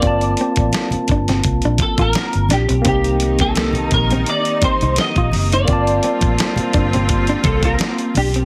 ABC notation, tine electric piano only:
X:1
M:4/4
L:1/8
Q:"Swing 16ths" 1/4=85
K:Gm
V:1 name="Tine electric piano"
[B,CFa]8 | [B,CEG]8 | [B,CFa]8 |]